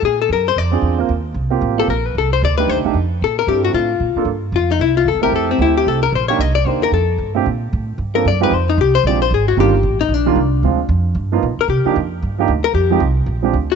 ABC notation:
X:1
M:4/4
L:1/8
Q:"Swing" 1/4=226
K:F
V:1 name="Hollow-body jazz guitar"
_A =A B c d4 | z4 z A B =B | A c d =B c z3 | A B G _G F4 |
z2 F _E =E F A B | A C E G A B c _d | _e d c B A3 z | [K:Bb] z4 z B d _c |
c E G c d c _A _G | G3 E D4- | D2 z4 z ^A | G2 z4 z B |
G2 z4 z _G |]
V:2 name="Upright piano"
z4 z [CDF_A]2 [B,CFB] | z3 [B,CFG]2 [B,CFG] z2 | z3 [A,D_EG]2 [A,DEG] z2 | z2 [CDEA]3 z2 [B,DFA] |
z6 z [A,CEG]- | [A,CEG]2 [A,CEG]3 z2 [B,D_EG] | z2 [B,D_EG]2 z3 [B,,A,CDG] | [K:Bb] z4 z [F,B,CDA] z [F,_A,CEG] |
z4 [F,_A,CDG] z3 | [E,G,B,DF] z4 [E,G,B,DF] z2 | [F,_A,CDF] z4 [F,^A,=B,^DF] z2 | z [F,B,DEG] z3 [F,B,DEG] z2 |
z [F,_A,CEG] z3 [F,A,CDG] z2 |]
V:3 name="Upright bass" clef=bass
B,,2 _G,,2 F,,2 E,,2 | _E,,2 C,,2 A,,,2 B,,,2 | C,,2 D,,2 (3_E,, C,, A,,, F,,2 | B,,2 G,,2 A,,2 B,, z |
G,,2 F,,2 C,,2 (3E,, C,, B,,, | F,,2 D,,2 C,,2 B,,,2 | C,,2 _E,,2 F,,2 G,,2 | [K:Bb] B,,2 A,,2 G,,2 _G,,2 |
F,,2 C,,2 B,,,2 _A,,,2 | G,,,2 A,,,2 B,,,2 C,,2 | D,,2 F,,2 G,,2 ^A,, z | C, z F,,2 G,,2 D,,2 |
F,,2 C,,2 B,,,2 D,,2 |]